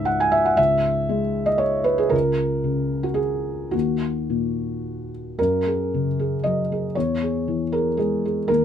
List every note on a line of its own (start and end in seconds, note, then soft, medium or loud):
0.00 0.54 C#2 medium
0.00 1.20 G#2 soft
0.00 0.32 E5 loud
0.05 0.19 F#5 medium
0.20 0.33 G#5 medium
0.32 0.45 E5 medium
0.45 0.58 F#5 medium
0.57 2.09 C#2 medium
0.57 1.48 E5 medium
1.09 2.13 G#3 soft
1.46 1.60 D#5 medium
1.58 1.85 C#5 medium
1.84 1.99 B4 medium
1.98 2.12 G#4 medium
2.09 3.69 C#2 medium
2.09 3.03 A#4 medium
2.64 3.73 C#3 soft
3.03 3.17 F#4 medium
3.14 3.71 G#4 medium
3.71 5.34 D#2 soft
3.71 5.10 F#4 medium
4.30 5.38 A#2 soft
5.39 6.92 F#2 soft
5.39 6.43 A#4 medium
5.66 6.07 G#4 soft
5.94 6.34 C#3 soft
6.19 6.60 G#4 soft
6.44 6.86 F#3 soft
6.44 6.95 D#5 medium
6.72 6.96 G#4 soft
6.95 8.46 E2 soft
6.95 7.72 C#5 medium
7.22 7.63 G#4 soft
7.48 7.88 E3 soft
7.72 7.96 G#4 soft
7.72 7.98 A#4 medium
7.97 8.39 G#3 soft
7.97 8.24 G#4 soft
8.25 8.50 G#4 soft
8.48 8.65 D#2 medium
8.48 8.65 A#4 medium